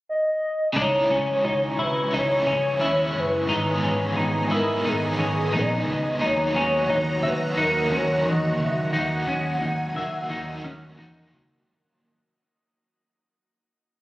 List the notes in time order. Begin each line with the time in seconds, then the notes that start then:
0.09 D#5
0.73 C#2 C#3 G#3 D#4 C#6
0.77 C#4 G#4 C#5 G#5
0.81 E4
1.10 C#2 C#4
1.44 C#2 D#4 F#4
1.79 C#3 E4 B4
2.11 C#2 C#3 G#3 C#4 D#4
2.15 E4 C#5
2.47 C#2 C#4
2.79 D#2 C#3 G#3 C#4 E4
2.85 E4
3.15 F#1 B4
3.47 G#1 G#2 D#3 G#3 B3 D#4 D#5 G#5
3.52 D#4
3.83 G#1 C#4
4.17 G#1 D#4 G#4
4.40 C#5
4.50 G#2 B3 D#4 E4 A#4
4.55 G#3 D#5
4.84 G#1 G#2 D#3 G#3 B3 D#4
4.89 G#4
5.19 G#1 C#4
5.51 A#1 D#3 G#3 C#4 D#4
5.55 B3 D#4 D#5
5.86 C#2
6.19 D#2 D#3 F#3 A#3 D#4 F#4 F#5 A#5
6.24 D#4 C#5
6.55 D#2 C#4
6.89 D#2 D#4
7.23 D#3 F#3 E5
7.27 B4
7.54 D#2 D#3 F#3 D#4
7.60 A#3 A#4
7.90 D#2 C#4
7.96 C#5
8.25 E2 D#3 D#5
8.59 C#2
8.63 E5
8.93 D#2 D#3 F#3 A#3 D#4 G#5
8.97 F#5
9.27 D#2 C#4
9.61 D#2 D#4
9.96 D#3 A#3 E5
10.00 F#3
10.29 D#2 D#3 F#3 A#3 D#4
10.34 D#4
10.64 D#2 C#4
10.97 E2 D#3 F#3 A#3 D#4
11.03 D#4
11.33 C#2 F#4